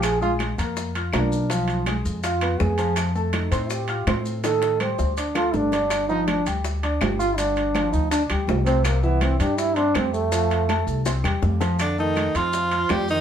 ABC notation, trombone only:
X:1
M:4/4
L:1/8
Q:1/4=163
K:Fmix
V:1 name="Trombone"
_A F z4 D2 | F2 z2 F2 _A2 | z2 E2 G2 z2 | A2 c2 z F D2- |
D E D z4 F | D3 E D z2 C | B, =B, C D =E D C A,- | A,4 z4 |
D, E,2 F,3 G, E, |]